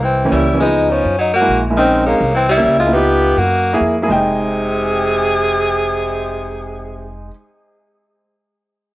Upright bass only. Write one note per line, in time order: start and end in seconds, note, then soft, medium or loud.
0.00 0.29 C2 medium
0.32 0.99 C#2 medium
1.05 1.45 F#2 medium
1.48 2.15 A#1 medium
2.21 2.61 C2 medium
2.64 3.32 C#2 medium
3.37 3.78 F#2 medium
3.81 4.06 F2 medium
4.10 7.28 F1 medium